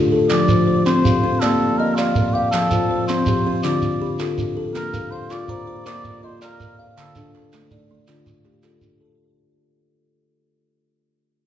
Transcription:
0.00 0.31 D4 medium
0.00 0.12 F4 medium
0.00 0.12 G4 medium
0.00 0.11 A4 medium
0.12 0.49 A4 medium
0.29 0.68 F3 medium
0.29 0.82 D5 loud
0.29 clap medium
0.29 shekere medium
0.48 1.05 F4 medium
0.48 0.66 C5 medium
0.48 shekere medium
0.68 1.23 C5 medium
0.86 1.22 C4 medium
0.86 1.23 C4 medium
0.86 1.42 C5 medium
0.86 clap soft
0.86 shekere medium
1.05 1.61 G4 medium
1.05 1.61 F5 medium
1.05 shekere medium
1.23 1.42 C4 medium
1.23 1.61 G4 medium
1.40 1.78 A#3 medium
1.40 1.79 A#3 medium
1.40 1.79 A4 medium
1.40 1.97 D5 medium
1.40 clap medium
1.40 shekere medium
1.78 2.16 A#3 medium
1.78 1.97 A#4 medium
1.78 2.35 D#5 medium
1.95 2.34 F4 medium
1.95 2.35 D5 medium
1.95 2.34 F5 medium
1.95 clap soft
1.95 shekere medium
2.15 2.53 A#4 medium
2.15 shekere medium
2.33 2.50 G4 medium
2.33 2.72 F5 medium
2.51 2.90 F3 medium
2.51 2.91 F3 medium
2.51 3.04 A4 medium
2.51 clap medium
2.51 shekere medium
2.71 3.28 F4 medium
2.71 2.89 C5 medium
2.71 shekere medium
2.91 3.46 C5 medium
3.08 3.46 C4 medium
3.08 3.45 C4 medium
3.08 3.60 C5 medium
3.08 clap soft
3.08 shekere medium
3.26 3.83 G4 medium
3.26 3.83 F5 medium
3.26 shekere medium
3.46 3.65 C4 medium
3.46 3.83 G4 medium
3.63 4.02 D3 medium
3.63 4.20 D4 medium
3.63 4.19 F4 medium
3.63 4.15 D5 medium
3.63 clap medium
3.63 shekere medium
3.82 shekere medium
4.01 4.39 D3 medium
4.01 4.57 G4 medium
4.19 4.57 F4 medium
4.19 4.56 A4 medium
4.19 clap soft
4.19 shekere medium
4.38 4.76 D4 medium
4.38 shekere medium
4.57 4.94 A4 medium
4.75 5.12 A#3 medium
4.75 5.13 A#3 medium
4.75 5.12 A#4 medium
4.75 clap soft
4.75 shekere medium
4.94 5.50 A#4 medium
4.94 5.11 F5 medium
4.94 shekere medium
5.11 5.33 C5 medium
5.11 5.68 F5 medium
5.30 5.66 F4 medium
5.30 5.68 F4 medium
5.30 5.85 D5 loud
5.30 clap soft
5.30 shekere medium
5.48 6.05 C5 medium
5.48 6.05 A#5 medium
5.48 shekere medium
5.67 6.05 F4 medium
5.67 6.23 C5 medium
5.86 6.24 A#3 medium
5.86 6.42 A#4 medium
5.86 6.21 D5 loud
5.86 6.41 D5 medium
5.86 clap medium
5.86 shekere medium
6.04 shekere medium
6.23 6.60 F4 medium
6.23 6.41 C5 medium
6.23 6.79 D#5 medium
6.42 6.77 A#4 medium
6.42 6.79 D5 medium
6.42 6.78 F5 medium
6.42 clap soft
6.42 shekere medium
6.60 6.98 A#4 medium
6.60 shekere medium
6.79 7.16 F5 medium
6.97 7.34 D3 medium
6.97 7.35 D3 medium
6.97 7.37 A4 medium
6.97 clap medium
6.97 shekere medium
7.15 7.71 D4 medium
7.15 7.33 A4 medium
7.15 clap soft
7.15 shekere medium
7.35 7.90 A4 medium
7.35 clap soft
7.53 7.90 A3 medium
7.53 clap soft
7.53 shekere medium
7.71 8.27 D#4 medium
7.71 8.27 D5 medium
7.71 shekere medium
7.91 8.45 D#3 medium
7.91 8.27 A3 medium
8.07 8.45 D3 medium
8.07 8.64 D4 medium
8.07 8.62 F4 medium
8.07 clap medium
8.07 shekere medium
8.26 clap soft
8.26 shekere medium
8.45 8.82 A3 medium
8.45 9.00 G4 medium
8.45 clap soft
8.63 9.00 F4 medium
8.63 8.99 A4 medium
8.63 clap soft
8.63 shekere medium
8.81 9.19 D4 medium
8.81 shekere medium
9.00 9.37 A4 medium

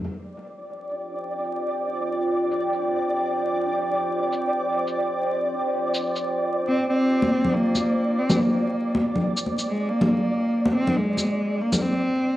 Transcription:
0.00 11.78 F4 medium
0.00 11.78 C5 medium
0.00 11.82 D5 medium
0.00 11.78 G5 medium
0.89 shaker medium
1.44 shaker soft
2.51 shaker medium
2.73 shaker soft
4.32 shaker medium
4.87 shaker soft
5.94 shaker medium
6.16 shaker soft
6.68 6.88 C4 loud
6.90 7.55 C4 loud
7.22 high conga medium
7.45 low conga medium
7.54 8.20 A#3 loud
7.75 high conga medium
7.75 shaker medium
8.18 8.41 C4 medium
8.30 high conga medium
8.30 low conga medium
8.30 shaker soft
8.39 9.25 A#3 medium
8.95 high conga medium
9.16 low conga medium
9.37 shaker medium
9.46 high conga medium
9.58 shaker soft
9.68 9.91 G#3 medium
9.89 10.74 A#3 loud
10.01 high conga medium
10.01 low conga medium
10.65 high conga medium
10.75 10.98 C4 loud
10.87 low conga medium
10.97 11.63 G#3 loud
11.17 high conga medium
11.17 shaker medium
11.61 11.84 A#3 medium
11.72 high conga medium
11.72 low conga medium
11.72 shaker soft
11.82 12.37 C4 medium

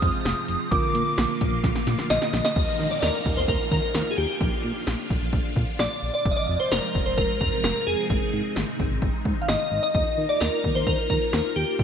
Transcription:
0.00 0.11 F2 loud
0.00 0.70 G#2 medium
0.00 0.70 C3 medium
0.00 2.52 F3 medium
0.00 0.68 C4 medium
0.00 0.70 C4 medium
0.00 0.68 F4 medium
0.00 0.70 F4 medium
0.00 0.68 G#4 medium
0.00 0.74 D#6 medium
0.00 kick medium
0.00 closed hi-hat medium
0.25 0.34 F1 loud
0.25 snare loud
0.25 closed hi-hat medium
0.48 0.57 F1 loud
0.48 closed hi-hat medium
0.71 0.80 A#1 loud
0.71 2.54 A#2 medium
0.71 2.53 D3 medium
0.71 2.54 D3 medium
0.71 2.54 A#3 medium
0.71 2.53 F4 medium
0.71 2.54 F4 medium
0.71 2.53 A#4 medium
0.71 2.06 D6 medium
0.71 kick loud
0.71 closed hi-hat medium
0.95 1.03 A#2 loud
0.95 closed hi-hat medium
1.18 1.26 A#1 loud
1.18 snare loud
1.18 closed hi-hat medium
1.41 1.49 A#1 loud
1.41 kick medium
1.41 closed hi-hat medium
1.52 1.61 A#1 loud
1.64 1.72 A#1 loud
1.64 kick loud
1.64 snare medium
1.64 closed hi-hat medium
1.76 snare medium
1.87 1.95 A#2 loud
1.87 snare medium
1.87 closed hi-hat medium
1.99 snare medium
2.10 2.18 A#1 loud
2.10 2.43 D#5 loud
2.10 snare medium
2.10 closed hi-hat medium
2.22 snare medium
2.33 2.42 A#1 loud
2.33 snare loud
2.33 open hi-hat medium
2.45 2.92 D#5 loud
2.45 snare loud
2.56 2.65 D#2 loud
2.56 6.22 A#2 medium
2.56 4.39 D#3 medium
2.56 6.22 F3 medium
2.56 4.39 D#4 medium
2.56 8.06 F4 medium
2.56 kick loud
2.56 downlifter medium
2.79 2.88 D#3 loud
2.91 3.03 D5 medium
3.02 3.11 D#2 loud
3.02 3.38 A#4 medium
3.02 snare loud
3.26 3.34 D#2 loud
3.26 kick medium
3.37 3.45 D#2 medium
3.37 3.42 C5 medium
3.48 3.57 D#2 loud
3.48 3.59 A#4 medium
3.48 kick loud
3.71 3.80 D#3 medium
3.71 4.08 A#4 medium
3.71 kick medium
3.95 4.03 D#2 loud
3.95 snare loud
4.11 4.18 G#4 medium
4.18 4.26 D#2 loud
4.18 4.61 G4 medium
4.41 4.49 A#1 loud
4.41 6.24 D3 medium
4.41 6.24 D4 medium
4.41 kick loud
4.64 4.72 A#2 medium
4.87 4.95 A#1 loud
4.87 snare loud
5.10 5.19 A#1 loud
5.10 kick medium
5.22 5.30 A#1 loud
5.33 5.41 A#1 loud
5.33 kick loud
5.56 5.65 A#2 loud
5.56 kick medium
5.79 5.88 A#1 loud
5.79 6.13 D5 loud
5.79 snare loud
6.03 6.11 A#1 medium
6.14 6.32 D5 medium
6.26 6.34 F1 loud
6.26 9.91 G#2 medium
6.26 9.91 C3 medium
6.26 8.08 F3 medium
6.26 9.91 C4 medium
6.26 kick loud
6.31 6.37 D#5 medium
6.37 6.61 D5 loud
6.49 6.57 F2 loud
6.60 6.72 C5 medium
6.71 6.80 F1 loud
6.71 7.04 A#4 medium
6.71 snare loud
6.95 7.03 F1 loud
6.95 kick medium
7.06 7.15 F1 loud
7.06 7.11 C5 medium
7.18 7.26 F1 loud
7.18 7.28 A#4 medium
7.18 kick loud
7.41 7.49 F2 loud
7.41 7.63 A#4 medium
7.41 kick medium
7.64 7.72 F1 loud
7.64 7.88 A#4 medium
7.64 snare loud
7.87 7.95 F1 medium
7.87 8.30 G#4 medium
8.10 8.18 G#1 loud
8.10 11.76 D#3 medium
8.10 11.76 D#4 medium
8.10 kick loud
8.33 8.42 G#2 loud
8.56 8.65 G#1 loud
8.56 snare loud
8.80 8.88 G#1 loud
8.80 kick medium
8.91 8.99 G#1 medium
9.02 9.11 G#1 loud
9.02 kick loud
9.25 9.34 G#2 medium
9.25 kick medium
9.42 9.49 F5 medium
9.48 9.57 G#1 medium
9.48 9.82 D#5 loud
9.48 snare loud
9.72 9.80 G#1 medium
9.83 10.31 D#5 loud
9.95 10.03 D#2 loud
9.95 11.77 A#2 medium
9.95 11.84 F3 medium
9.95 11.84 F4 medium
9.95 kick loud
10.18 10.26 D#3 loud
10.29 10.41 D5 loud
10.40 10.49 D#2 loud
10.40 10.76 A#4 medium
10.40 snare loud
10.64 10.72 D#2 loud
10.64 kick medium
10.75 10.84 D#2 medium
10.75 10.87 C5 medium
10.87 10.95 D#2 loud
10.87 11.09 A#4 medium
10.87 kick loud
11.10 11.18 D#3 loud
11.10 11.57 A#4 medium
11.10 kick medium
11.33 11.42 D#2 loud
11.33 snare loud
11.56 11.65 D#2 loud
11.56 11.84 G4 medium
11.79 11.84 A#1 loud
11.79 11.84 A#2 medium
11.79 11.84 D3 medium
11.79 11.84 D4 medium
11.79 kick loud

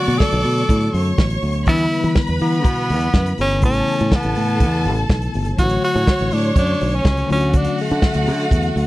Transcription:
0.00 1.41 D3 medium
0.00 1.38 F#3 medium
0.00 1.39 A3 medium
0.00 1.39 B3 medium
0.00 0.20 F#4 loud
0.00 1.39 F#4 medium
0.00 0.90 D5 loud
0.00 0.90 D6 loud
0.08 0.17 B2 medium
0.08 closed hi-hat medium
0.18 1.17 A4 loud
0.18 kick loud
0.18 snare loud
0.31 0.41 B1 loud
0.31 closed hi-hat medium
0.44 0.62 B2 loud
0.44 open hi-hat medium
0.57 closed hi-hat soft
0.69 0.87 A2 medium
0.69 kick loud
0.69 closed hi-hat medium
0.80 closed hi-hat soft
0.94 1.11 F#2 medium
0.94 1.66 C#5 medium
0.94 1.66 C#6 loud
0.94 open hi-hat medium
1.05 closed hi-hat soft
1.18 1.36 A1 loud
1.18 kick loud
1.18 snare loud
1.30 closed hi-hat medium
1.42 1.67 D2 medium
1.42 open hi-hat medium
1.53 closed hi-hat medium
1.65 1.85 E2 loud
1.65 3.58 D3 medium
1.65 3.58 E3 medium
1.65 3.58 G3 medium
1.65 3.59 B3 medium
1.65 1.74 D4 medium
1.65 2.13 E4 loud
1.65 3.59 B4 medium
1.65 3.59 B5 loud
1.65 kick loud
1.65 closed hi-hat medium
1.74 3.62 E4 medium
1.74 closed hi-hat soft
1.92 open hi-hat medium
2.04 2.13 E3 loud
2.04 closed hi-hat medium
2.15 kick loud
2.15 snare loud
2.27 2.37 E2 medium
2.27 closed hi-hat soft
2.39 2.64 E3 loud
2.39 3.35 B3 loud
2.39 open hi-hat medium
2.53 closed hi-hat soft
2.64 2.92 B2 loud
2.64 kick loud
2.64 closed hi-hat medium
2.76 closed hi-hat soft
2.89 3.08 E2 loud
2.89 open hi-hat medium
3.00 closed hi-hat soft
3.14 3.32 F#2 medium
3.14 kick loud
3.14 snare loud
3.26 closed hi-hat medium
3.38 3.63 G1 loud
3.38 3.62 C#4 loud
3.38 open hi-hat medium
3.49 closed hi-hat medium
3.61 3.81 A1 loud
3.61 5.54 C#3 medium
3.61 5.54 E3 medium
3.61 5.54 A3 medium
3.61 5.55 B3 medium
3.61 4.17 C#4 loud
3.61 5.55 E4 medium
3.61 5.55 A4 loud
3.61 5.54 A5 loud
3.61 kick loud
3.61 closed hi-hat medium
3.74 closed hi-hat medium
3.87 open hi-hat medium
4.01 4.09 A2 loud
4.01 closed hi-hat soft
4.12 5.11 B3 loud
4.12 kick loud
4.12 snare loud
4.22 4.33 A1 loud
4.22 closed hi-hat soft
4.35 4.62 A2 loud
4.35 open hi-hat medium
4.48 closed hi-hat soft
4.60 4.87 E2 medium
4.60 kick loud
4.60 closed hi-hat medium
4.71 closed hi-hat soft
4.85 5.03 A1 loud
4.85 open hi-hat medium
4.96 closed hi-hat soft
5.09 5.27 B1 medium
5.09 kick loud
5.09 snare loud
5.22 closed hi-hat medium
5.34 5.52 G1 loud
5.34 open hi-hat medium
5.45 closed hi-hat medium
5.56 5.76 A1 loud
5.56 7.25 D3 medium
5.56 7.25 F#3 medium
5.56 7.26 A3 medium
5.56 5.64 E4 medium
5.56 5.81 F#4 loud
5.56 7.26 C#5 medium
5.56 7.26 C#5 loud
5.56 7.26 C#6 loud
5.56 kick loud
5.56 closed hi-hat medium
5.65 7.29 F#4 medium
5.69 closed hi-hat medium
5.83 6.35 F#4 loud
5.83 open hi-hat medium
5.96 6.04 A2 loud
5.96 closed hi-hat soft
6.07 kick loud
6.07 snare loud
6.19 6.29 A1 loud
6.19 closed hi-hat soft
6.31 6.50 A2 medium
6.31 6.57 D4 loud
6.31 open hi-hat medium
6.44 closed hi-hat soft
6.56 6.74 F#2 loud
6.56 6.96 D4 loud
6.56 kick loud
6.56 closed hi-hat medium
6.66 closed hi-hat soft
6.81 6.99 B1 loud
6.81 open hi-hat medium
6.91 7.30 C#4 loud
6.91 closed hi-hat soft
7.05 7.23 C#2 loud
7.05 kick loud
7.05 snare loud
7.17 closed hi-hat medium
7.27 7.66 D2 loud
7.27 8.87 D3 medium
7.27 8.87 F#3 medium
7.27 8.87 A3 medium
7.27 8.87 C#4 medium
7.27 7.35 F4 medium
7.27 8.87 F#4 loud
7.27 8.87 F#5 loud
7.27 open hi-hat medium
7.32 7.58 C#4 loud
7.32 8.87 F#4 medium
7.40 closed hi-hat medium
7.53 7.79 D4 loud
7.53 kick loud
7.53 closed hi-hat medium
7.64 closed hi-hat medium
7.78 8.87 A3 loud
7.78 open hi-hat medium
7.91 8.00 D3 loud
7.91 closed hi-hat soft
8.02 kick loud
8.02 snare loud
8.14 8.29 D2 loud
8.14 closed hi-hat soft
8.26 8.45 D3 loud
8.26 open hi-hat medium
8.40 closed hi-hat medium
8.51 8.69 E2 loud
8.51 kick loud
8.51 closed hi-hat medium
8.63 closed hi-hat soft
8.76 8.87 D2 loud
8.76 open hi-hat medium

